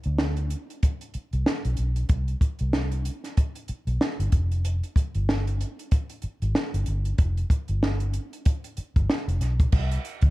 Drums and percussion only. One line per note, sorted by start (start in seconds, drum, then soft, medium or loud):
0.04 closed hi-hat soft
0.18 snare loud
0.37 closed hi-hat soft
0.50 closed hi-hat medium
0.70 closed hi-hat soft
0.83 kick medium
0.83 closed hi-hat medium
1.01 closed hi-hat soft
1.14 closed hi-hat soft
1.33 closed hi-hat soft
1.46 snare medium
1.65 closed hi-hat soft
1.77 closed hi-hat medium
1.96 closed hi-hat soft
2.09 kick loud
2.09 closed hi-hat medium
2.28 closed hi-hat soft
2.41 kick medium
2.41 closed hi-hat medium
2.59 closed hi-hat soft
2.73 snare loud
2.92 closed hi-hat soft
3.05 closed hi-hat medium
3.24 snare soft
3.24 closed hi-hat soft
3.37 kick medium
3.37 closed hi-hat medium
3.55 closed hi-hat soft
3.68 closed hi-hat medium
3.87 closed hi-hat soft
4.01 snare loud
4.20 closed hi-hat medium
4.32 kick medium
4.32 closed hi-hat medium
4.51 closed hi-hat soft
4.65 closed hi-hat medium
4.83 closed hi-hat soft
4.96 kick medium
4.96 closed hi-hat medium
5.15 closed hi-hat soft
5.29 snare loud
5.47 closed hi-hat soft
5.61 closed hi-hat medium
5.79 closed hi-hat soft
5.91 kick medium
5.91 closed hi-hat medium
6.10 closed hi-hat soft
6.22 closed hi-hat medium
6.42 closed hi-hat soft
6.55 snare loud
6.74 closed hi-hat medium
6.86 closed hi-hat medium
7.05 closed hi-hat soft
7.18 kick loud
7.18 closed hi-hat medium
7.37 closed hi-hat soft
7.50 kick medium
7.50 closed hi-hat medium
7.68 closed hi-hat soft
7.83 snare loud
8.00 closed hi-hat soft
8.13 closed hi-hat medium
8.33 closed hi-hat soft
8.45 kick medium
8.45 closed hi-hat medium
8.64 closed hi-hat soft
8.77 closed hi-hat medium
8.96 kick medium
8.96 closed hi-hat soft
9.10 snare loud
9.29 closed hi-hat soft
9.41 snare soft
9.41 closed hi-hat medium
9.60 kick medium
9.60 closed hi-hat soft
9.72 kick loud
9.72 crash medium
9.91 closed hi-hat soft
10.05 closed hi-hat medium
10.21 kick medium
10.21 closed hi-hat soft